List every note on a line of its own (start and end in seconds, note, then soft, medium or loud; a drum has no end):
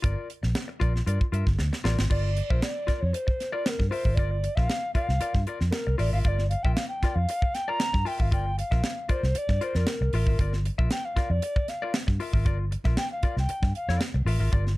0.02 0.14 G1 loud
0.02 0.27 F4 medium
0.02 0.28 A#4 medium
0.02 0.28 D5 medium
0.02 kick loud
0.02 closed hi-hat loud
0.30 closed hi-hat medium
0.43 0.52 A#1 loud
0.43 muted clean electric guitar stroke soft
0.43 snare soft
0.55 muted clean electric guitar stroke soft
0.55 snare loud
0.55 closed hi-hat medium
0.68 muted clean electric guitar stroke soft
0.80 1.01 A#1 medium
0.80 0.99 F4 medium
0.80 0.94 A#4 medium
0.80 0.93 D5 medium
0.80 kick medium
0.80 closed hi-hat medium
0.94 muted clean electric guitar stroke soft
0.94 snare soft
1.06 1.17 G2 loud
1.06 1.25 F4 medium
1.06 1.20 A#4 medium
1.06 1.19 D5 medium
1.06 closed hi-hat loud
1.21 muted clean electric guitar stroke soft
1.21 kick medium
1.32 1.43 G2 medium
1.32 1.48 F4 medium
1.32 1.47 A#4 medium
1.32 1.46 E5 medium
1.32 closed hi-hat medium
1.47 1.56 G1 medium
1.47 muted clean electric guitar stroke medium
1.47 kick medium
1.47 snare soft
1.58 1.69 D2 medium
1.58 muted clean electric guitar stroke soft
1.58 snare medium
1.73 muted clean electric guitar stroke soft
1.73 snare medium
1.84 1.95 A1 medium
1.84 2.03 F4 medium
1.84 1.98 A#4 medium
1.84 1.97 D5 loud
1.84 snare medium
1.98 2.07 G#1 medium
1.98 muted clean electric guitar stroke medium
1.98 snare medium
2.10 2.40 G1 loud
2.10 2.29 F4 medium
2.10 2.24 A#4 medium
2.10 2.52 D5 medium
2.10 2.23 D5 medium
2.10 kick loud
2.10 crash loud
2.24 muted clean electric guitar stroke soft
2.37 muted clean electric guitar stroke soft
2.37 closed hi-hat medium
2.50 2.60 A#1 loud
2.50 2.61 F4 medium
2.50 2.62 A#4 medium
2.50 2.64 C5 medium
2.50 2.63 E5 medium
2.50 kick medium
2.62 3.03 D5 medium
2.62 muted clean electric guitar stroke soft
2.62 snare loud
2.62 closed hi-hat medium
2.87 3.03 F4 medium
2.87 3.01 A#4 medium
2.87 3.00 D5 medium
2.87 muted fingered electric bass stroke soft
2.87 kick medium
2.87 snare soft
2.87 closed hi-hat medium
3.01 3.11 F2 medium
3.01 3.15 C#5 medium
3.01 muted clean electric guitar stroke soft
3.13 3.54 C5 loud
3.13 muted clean electric guitar stroke soft
3.13 closed hi-hat loud
3.27 muted clean electric guitar stroke soft
3.27 kick medium
3.40 snare soft
3.40 closed hi-hat medium
3.52 3.65 F4 medium
3.52 3.65 A#4 medium
3.52 3.66 D5 medium
3.52 3.67 D5 medium
3.65 3.89 A#4 loud
3.65 3.70 C5 medium
3.65 snare loud
3.65 closed hi-hat medium
3.79 3.89 G2 medium
3.79 muted clean electric guitar stroke soft
3.79 kick medium
3.79 snare soft
3.90 4.06 F4 medium
3.90 4.05 A#4 medium
3.90 4.16 C5 medium
3.90 4.04 E5 medium
3.90 open hi-hat medium
4.05 4.17 G#1 medium
4.05 4.16 F4 soft
4.05 4.17 A#4 medium
4.05 4.19 E5 medium
4.05 kick medium
4.15 4.47 G1 loud
4.15 4.36 F4 medium
4.15 4.31 A#4 medium
4.15 4.57 D5 loud
4.15 kick loud
4.15 closed hi-hat medium
4.19 4.30 D5 medium
4.31 muted clean electric guitar stroke soft
4.44 muted clean electric guitar stroke soft
4.44 closed hi-hat medium
4.56 4.67 A#1 loud
4.56 4.68 F4 medium
4.56 4.69 A#4 medium
4.56 4.71 E5 medium
4.56 4.93 F5 loud
4.56 kick medium
4.56 snare soft
4.69 muted clean electric guitar stroke soft
4.69 snare loud
4.69 closed hi-hat medium
4.94 5.10 F4 medium
4.94 5.08 A#4 medium
4.94 5.07 D5 medium
4.94 5.43 F5 loud
4.94 muted fingered electric bass stroke soft
4.94 kick medium
4.94 closed hi-hat medium
5.08 5.18 C2 medium
5.08 muted clean electric guitar stroke soft
5.08 snare soft
5.21 5.40 F4 medium
5.21 5.35 A#4 medium
5.21 5.33 D5 medium
5.21 closed hi-hat loud
5.34 5.44 G2 loud
5.34 muted clean electric guitar stroke medium
5.34 kick medium
5.34 snare soft
5.47 5.62 F4 medium
5.47 5.60 A#4 medium
5.47 5.59 D5 medium
5.47 closed hi-hat medium
5.60 5.70 F2 medium
5.60 muted clean electric guitar stroke medium
5.60 snare soft
5.71 5.96 A#4 medium
5.71 muted clean electric guitar stroke soft
5.71 snare loud
5.71 closed hi-hat medium
5.87 5.96 C2 medium
5.87 muted clean electric guitar stroke medium
5.98 6.09 A1 medium
5.98 6.13 F4 medium
5.98 6.13 A#4 medium
5.98 6.12 D5 medium
5.98 6.12 E5 medium
5.98 open hi-hat medium
6.12 6.21 G#1 medium
6.12 6.23 F4 medium
6.12 6.24 A#4 medium
6.12 6.26 E5 medium
6.12 6.19 F5 medium
6.24 6.54 G1 loud
6.24 6.43 F4 loud
6.24 6.39 A#4 medium
6.24 6.37 D5 loud
6.24 6.49 D5 loud
6.24 6.29 F5 medium
6.24 kick loud
6.24 closed hi-hat loud
6.39 muted clean electric guitar stroke soft
6.39 snare soft
6.50 6.65 F5 medium
6.50 muted clean electric guitar stroke soft
6.50 closed hi-hat medium
6.63 6.73 A#1 loud
6.63 6.76 F4 medium
6.63 6.77 A#4 medium
6.63 6.78 E5 medium
6.63 6.74 G5 loud
6.63 kick medium
6.75 6.88 F5 medium
6.75 snare loud
6.75 closed hi-hat medium
6.88 7.17 G5 medium
7.02 7.18 F4 medium
7.02 7.17 A#4 medium
7.02 7.16 D5 medium
7.02 muted fingered electric bass stroke soft
7.02 kick medium
7.02 snare soft
7.02 closed hi-hat medium
7.15 7.25 F2 medium
7.15 7.56 F5 loud
7.15 muted clean electric guitar stroke medium
7.29 muted clean electric guitar stroke soft
7.29 closed hi-hat loud
7.42 muted clean electric guitar stroke soft
7.42 kick medium
7.55 7.70 G5 loud
7.55 snare soft
7.55 closed hi-hat medium
7.68 7.79 F4 medium
7.68 7.80 A#4 medium
7.68 7.81 D5 medium
7.68 8.08 A#5 loud
7.80 snare loud
7.80 closed hi-hat medium
7.93 8.03 G2 medium
7.93 muted clean electric guitar stroke soft
7.93 kick loud
7.93 snare soft
8.05 8.19 F4 medium
8.05 8.18 A#4 medium
8.05 8.17 E5 medium
8.05 8.23 G5 loud
8.05 open hi-hat medium
8.19 8.32 G#1 medium
8.19 8.30 F4 medium
8.19 8.32 A#4 medium
8.19 8.33 E5 medium
8.19 8.32 F5 medium
8.19 kick medium
8.31 8.61 G1 loud
8.31 8.50 F4 medium
8.31 8.46 A#4 medium
8.31 8.45 D5 medium
8.31 8.57 G5 loud
8.31 kick loud
8.31 closed hi-hat loud
8.46 muted clean electric guitar stroke soft
8.58 9.13 F5 loud
8.58 muted clean electric guitar stroke soft
8.58 closed hi-hat medium
8.71 8.81 A#1 medium
8.71 8.82 F4 medium
8.71 8.83 A#4 medium
8.71 8.84 E5 medium
8.71 kick medium
8.71 snare soft
8.84 snare loud
8.84 closed hi-hat medium
9.09 9.24 F4 medium
9.09 9.24 A#4 medium
9.09 9.39 C5 medium
9.09 9.22 D5 medium
9.09 muted fingered electric bass stroke soft
9.09 kick medium
9.09 closed hi-hat medium
9.23 9.32 C2 medium
9.23 muted clean electric guitar stroke soft
9.23 snare soft
9.35 9.65 D5 loud
9.35 muted clean electric guitar stroke soft
9.35 closed hi-hat loud
9.49 9.58 G2 loud
9.49 muted clean electric guitar stroke medium
9.49 kick medium
9.49 snare soft
9.61 9.76 F4 medium
9.61 9.75 A#4 medium
9.61 9.78 C5 medium
9.61 9.74 D5 medium
9.61 closed hi-hat medium
9.75 9.84 F2 medium
9.75 9.87 F4 medium
9.75 10.54 A#4 medium
9.75 9.87 A#4 medium
9.75 9.88 D5 medium
9.75 snare soft
9.87 snare loud
9.87 closed hi-hat medium
10.01 10.10 C2 medium
10.01 muted clean electric guitar stroke soft
10.13 10.23 A1 medium
10.13 10.28 F4 medium
10.13 10.28 A#4 medium
10.13 10.27 E5 medium
10.13 open hi-hat medium
10.26 10.36 G#1 medium
10.26 10.39 F4 medium
10.26 10.40 A#4 medium
10.26 10.41 E5 medium
10.26 kick medium
10.39 10.68 G1 loud
10.39 10.58 F4 medium
10.39 10.54 A#4 medium
10.39 10.53 D5 loud
10.39 kick loud
10.39 closed hi-hat loud
10.53 muted clean electric guitar stroke soft
10.53 snare soft
10.65 muted clean electric guitar stroke soft
10.65 closed hi-hat medium
10.78 10.88 A#1 loud
10.78 10.89 F4 medium
10.78 10.90 A#4 medium
10.78 10.91 E5 medium
10.78 kick medium
10.91 11.07 G5 loud
10.91 snare loud
10.91 closed hi-hat medium
11.05 11.32 F5 medium
11.16 11.31 F4 medium
11.16 11.30 A#4 medium
11.16 11.29 D5 medium
11.16 muted fingered electric bass stroke soft
11.16 kick medium
11.16 snare soft
11.16 closed hi-hat medium
11.30 11.39 F2 medium
11.30 11.71 D5 medium
11.30 muted clean electric guitar stroke medium
11.42 muted clean electric guitar stroke soft
11.42 closed hi-hat loud
11.56 muted clean electric guitar stroke medium
11.56 kick medium
11.68 11.95 F5 medium
11.68 snare soft
11.68 closed hi-hat medium
11.82 11.93 F4 medium
11.82 11.93 A#4 medium
11.82 11.94 D5 medium
11.94 snare loud
11.94 closed hi-hat medium
12.07 12.17 G2 medium
12.07 muted clean electric guitar stroke soft
12.07 kick medium
12.07 snare soft
12.20 12.34 F4 medium
12.20 12.33 A#4 medium
12.20 12.32 E5 medium
12.20 open hi-hat medium
12.33 12.46 G#1 medium
12.33 12.44 F4 medium
12.33 12.45 A#4 medium
12.33 12.46 E5 medium
12.33 kick medium
12.45 12.75 G1 loud
12.45 12.64 F4 medium
12.45 12.59 A#4 medium
12.45 12.58 D5 medium
12.45 kick loud
12.45 closed hi-hat medium
12.59 muted clean electric guitar stroke soft
12.71 muted clean electric guitar stroke soft
12.71 closed hi-hat medium
12.84 12.94 A#1 loud
12.84 12.97 F4 medium
12.84 12.97 A#4 medium
12.84 12.98 E5 medium
12.84 kick medium
12.84 snare soft
12.97 13.11 G5 loud
12.97 muted clean electric guitar stroke soft
12.97 snare loud
12.97 closed hi-hat medium
13.12 13.36 F5 medium
13.23 13.38 F4 medium
13.23 13.37 A#4 medium
13.23 13.36 D5 medium
13.23 muted fingered electric bass stroke soft
13.23 kick medium
13.23 closed hi-hat medium
13.37 13.46 C2 medium
13.37 13.74 G5 loud
13.37 muted clean electric guitar stroke medium
13.37 snare soft
13.49 muted fingered electric bass stroke medium
13.49 muted clean electric guitar stroke soft
13.49 closed hi-hat loud
13.62 13.72 G2 loud
13.62 muted clean electric guitar stroke soft
13.62 kick medium
13.62 snare soft
13.75 14.00 F5 medium
13.75 closed hi-hat medium
13.88 13.98 F2 medium
13.88 14.00 F4 medium
13.88 14.01 A#4 medium
13.88 14.01 D5 medium
13.88 snare soft
14.01 muted clean electric guitar stroke soft
14.01 snare loud
14.01 closed hi-hat medium
14.14 14.23 C2 medium
14.14 muted clean electric guitar stroke soft
14.25 14.36 A1 medium
14.25 14.40 F4 medium
14.25 14.39 A#4 medium
14.25 14.38 E5 medium
14.25 open hi-hat medium
14.39 14.49 G#1 medium
14.39 14.51 F4 medium
14.39 14.52 A#4 medium
14.39 14.53 E5 medium
14.52 14.78 G1 loud
14.52 14.71 F4 medium
14.52 14.66 A#4 medium
14.52 14.65 D5 loud
14.52 kick loud
14.52 closed hi-hat medium
14.66 muted clean electric guitar stroke soft
14.66 snare soft